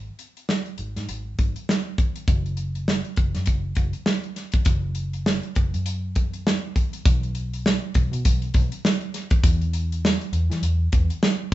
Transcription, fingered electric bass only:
0.79 0.93 G#1 medium
0.96 1.07 G#2 medium
1.09 1.33 G#1 medium
1.39 1.53 G#1 medium
2.28 3.01 F#1 loud
3.17 3.32 F#1 medium
3.36 3.45 F#2 medium
3.47 3.72 F#1 medium
3.77 3.91 F#1 medium
4.66 5.39 F#1 loud
5.56 5.70 F#1 medium
5.74 6.59 F#2 medium
7.06 7.79 B1 loud
7.95 8.09 B1 loud
8.12 8.22 B2 loud
8.26 8.50 B1 medium
8.55 8.69 B1 medium
9.44 10.17 E2 loud
10.32 10.47 E2 loud
10.50 10.60 E3 medium
10.62 10.87 E2 loud
10.93 11.07 E2 loud

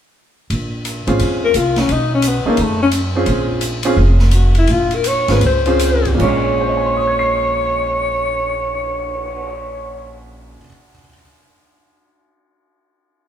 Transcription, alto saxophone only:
1.44 1.59 A#4 medium
1.58 1.81 F4 medium
1.79 1.94 C#4 medium
1.92 2.13 D#4 medium
2.15 2.29 C#4 medium
2.28 2.47 B3 medium
2.48 2.63 A#3 medium
2.62 2.82 A3 medium
2.82 2.89 C#4 medium
4.35 4.55 F#4 medium
4.58 4.73 E4 medium
4.72 4.97 F4 medium
4.95 5.09 A#4 medium
5.07 5.33 C#5 medium
5.31 5.43 B4 medium
5.46 6.11 C5 medium
6.21 10.21 C#5 medium

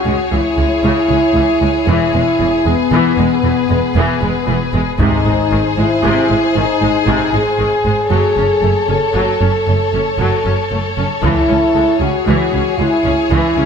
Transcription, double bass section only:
0.06 0.14 C#2 soft
0.32 0.40 C#2 soft
0.58 0.66 C#2 soft
0.83 0.91 C#2 medium
1.09 1.17 C#2 soft
1.35 1.43 C#2 soft
1.61 1.69 C#2 soft
1.88 1.96 E1 medium
2.14 2.22 E1 soft
2.40 2.48 E1 soft
2.66 2.74 E1 soft
2.92 3.00 E1 medium
3.18 3.26 E1 soft
3.43 3.51 E1 soft
3.69 3.77 E1 soft
3.95 4.03 E1 medium
4.22 4.30 E1 soft
4.48 4.56 E1 soft
4.74 4.82 E1 soft
5.00 5.08 G#1 medium
5.26 5.34 G#1 soft
5.52 5.60 G#1 soft
5.78 5.86 G#1 soft
6.04 6.12 G#1 medium
6.30 6.38 G#1 soft
6.56 6.64 G#1 soft
6.82 6.90 G#1 soft
7.07 7.15 G#1 medium
7.33 7.41 G#1 soft
7.59 7.67 G#1 soft
7.85 7.93 G#1 soft
8.11 8.19 F#1 soft
8.37 8.45 F#1 soft
8.63 8.71 F#1 soft
8.89 8.97 F#1 soft
9.14 9.22 F#1 soft
9.41 9.49 F#1 soft
9.67 9.75 F#1 soft
9.93 10.01 F#1 soft
10.19 10.27 F#1 soft
10.45 10.53 F#1 soft
10.72 10.80 F#1 soft
10.98 11.06 F#1 soft
11.23 11.31 C#2 medium
11.49 11.57 C#2 soft
11.75 11.83 C#2 soft
12.01 12.09 C#2 soft
12.27 12.35 C#2 soft
12.53 12.61 C#2 soft
12.80 12.88 C#2 soft
13.05 13.13 C#2 soft
13.31 13.39 C#2 medium
13.57 13.65 C#2 soft

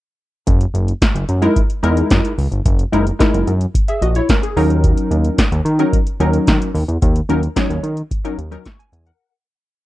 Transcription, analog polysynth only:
1.42 1.61 G#3 medium
1.42 1.61 D#4 medium
1.42 1.61 E4 medium
1.42 1.61 A#4 loud
1.83 2.33 G#3 medium
1.83 2.33 D#4 medium
1.83 2.33 E4 medium
1.83 2.33 A#4 loud
2.92 3.05 G#3 medium
2.92 3.05 D#4 medium
2.92 3.05 E4 medium
2.92 3.05 A#4 medium
3.19 3.50 G#3 medium
3.19 3.51 D#4 medium
3.19 3.51 E4 medium
3.19 3.51 A#4 medium
3.88 4.02 G#4 medium
3.88 4.01 E5 medium
4.02 4.15 F#4 medium
4.02 4.15 D#5 medium
4.16 4.29 E4 medium
4.16 4.29 C#5 medium
4.29 4.43 C#4 medium
4.29 4.42 A#4 medium
4.43 4.69 G#4 medium
4.57 5.44 F#3 medium
4.57 5.44 C#4 medium
4.57 5.44 D#4 medium
4.57 5.44 A#4 loud
5.79 5.98 F#3 medium
5.79 5.98 C#4 medium
5.79 5.98 D#4 medium
5.79 5.98 A#4 loud
6.20 6.69 F#3 loud
6.20 6.70 C#4 medium
6.20 6.70 D#4 medium
6.20 6.70 A#4 medium
7.29 7.42 F#3 medium
7.29 7.42 C#4 medium
7.29 7.42 D#4 medium
7.29 7.42 A#4 loud
7.56 7.87 F#3 medium
7.56 7.87 C#4 medium
7.56 7.87 D#4 medium
7.56 7.88 C#5 medium
8.24 8.37 F#3 medium
8.24 8.37 C#4 medium
8.24 8.37 D#4 medium
8.24 8.37 A#4 loud
8.51 8.64 F#3 medium
8.51 8.64 C#4 medium
8.51 8.64 D#4 medium
8.51 8.64 A#4 loud
8.65 8.78 C#6 medium
8.79 9.05 G#5 medium
9.07 9.33 A#4 medium
9.07 9.32 F#5 medium

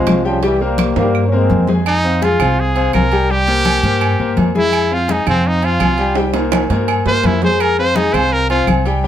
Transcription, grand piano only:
0.00 0.19 C4 medium
0.00 0.19 C5 medium
0.00 0.19 F5 medium
0.25 0.40 G3 medium
0.25 0.40 G4 medium
0.25 0.40 G5 medium
0.43 0.58 G3 medium
0.43 0.58 G4 medium
0.43 0.58 G5 medium
0.61 0.90 A#3 medium
0.61 0.91 A#4 medium
0.61 0.91 C5 medium
0.97 1.26 A#3 medium
0.97 1.26 A#4 medium
0.97 1.26 C5 medium
1.32 1.62 A#3 medium
1.32 1.62 A#4 medium
1.32 1.62 C5 medium
1.68 1.83 G#3 medium
1.68 1.83 G#4 medium
1.68 1.83 G#5 medium
2.04 2.19 C4 medium
2.04 2.19 C5 medium
2.04 2.19 F5 medium
2.22 2.37 G#3 medium
2.22 2.37 G#4 medium
2.22 2.37 G#5 medium
2.40 2.70 C4 medium
2.40 2.70 C5 medium
2.40 2.70 F5 medium
2.76 3.05 C4 medium
2.76 3.06 C5 medium
2.76 3.06 F5 medium
3.13 3.27 G3 medium
3.13 3.27 G4 medium
3.13 3.27 G5 medium
3.30 3.45 G3 medium
3.30 3.45 G4 medium
3.30 3.45 G5 medium
3.48 3.77 A#3 medium
3.48 3.77 A#4 medium
3.48 3.78 C5 medium
3.84 4.13 A#3 medium
3.84 4.13 A#4 medium
3.84 4.14 C5 medium
4.19 4.49 A#3 medium
4.19 4.49 A#4 medium
4.19 4.49 C5 medium
4.55 4.84 G#3 medium
4.55 4.85 G#4 medium
4.55 4.85 G#5 medium
4.91 5.06 C4 medium
4.91 5.06 C5 medium
4.91 5.06 F5 medium
5.10 5.24 G#3 medium
5.10 5.24 G#4 medium
5.10 5.24 G#5 medium
5.27 5.56 C4 medium
5.27 5.57 C5 medium
5.27 5.57 F5 medium
5.63 5.92 C4 medium
5.63 5.93 C5 medium
5.63 5.93 F5 medium
5.99 6.13 G3 medium
5.99 6.14 G4 medium
5.99 6.14 G5 medium
6.17 6.31 G3 medium
6.17 6.32 G4 medium
6.17 6.32 G5 medium
6.34 6.64 A#3 medium
6.34 6.64 A#4 medium
6.34 6.64 C5 medium
6.71 7.00 A#3 medium
6.71 7.00 A#4 medium
6.71 7.01 C5 medium
7.07 7.36 A#3 medium
7.07 7.36 A#4 medium
7.07 7.37 C5 medium
7.43 7.72 G#3 medium
7.43 7.72 G#4 medium
7.43 7.73 G#5 medium
7.79 7.93 C4 medium
7.79 7.93 C5 medium
7.79 7.94 F5 medium
7.97 8.11 G#3 medium
7.97 8.11 G#4 medium
7.97 8.11 G#5 medium
8.14 8.43 C4 medium
8.14 8.44 C5 medium
8.14 8.44 F5 medium
8.50 8.79 C4 medium
8.50 8.80 C5 medium
8.50 8.80 F5 medium
8.85 9.00 G3 medium
8.85 9.01 G4 loud
8.85 9.01 G5 medium
9.04 9.07 G3 medium
9.04 9.07 G4 medium

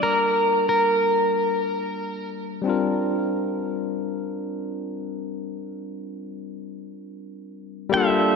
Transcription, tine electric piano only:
0.00 2.60 G3 medium
0.00 2.61 A#3 medium
0.00 2.62 D4 medium
0.00 2.63 F4 medium
0.00 2.64 A5 medium
2.62 7.87 G3 medium
2.62 7.88 C4 medium
2.62 7.89 D4 medium
2.67 7.90 F4 medium
2.67 7.91 A#4 medium
7.89 8.36 G3 loud
7.89 8.36 A#3 medium
7.89 8.36 D4 medium
7.95 8.36 F4 medium
7.95 8.36 A4 loud

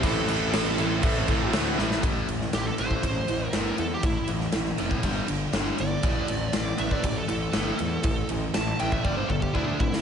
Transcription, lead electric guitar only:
0.07 1.51 A4 medium
2.55 2.66 G4 medium
2.66 2.78 A4 medium
2.80 3.47 C5 medium
3.47 3.76 A#4 medium
3.79 3.91 A4 medium
3.94 4.05 G4 medium
4.06 4.29 E4 loud
5.80 6.77 D5 loud
6.79 6.92 E5 medium
6.92 7.16 D5 medium
7.17 7.28 A4 medium
7.29 8.27 A4 medium
8.54 8.79 A5 loud
8.80 8.92 G5 medium
8.92 9.04 E5 medium
9.04 9.17 D5 loud
9.17 9.30 C5 medium
9.28 9.42 A4 loud
9.42 9.55 G4 medium
9.55 9.66 E4 medium
9.67 9.80 D4 medium
9.80 10.01 E4 medium

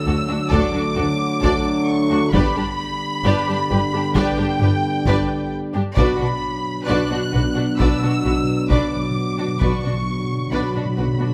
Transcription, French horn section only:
0.00 2.29 A3 medium
0.00 2.29 D4 medium
2.32 5.78 B3 medium
2.32 5.78 D4 medium
5.95 9.56 B3 medium
5.95 9.56 D4 medium
9.61 11.34 B3 soft
9.61 11.34 D4 soft

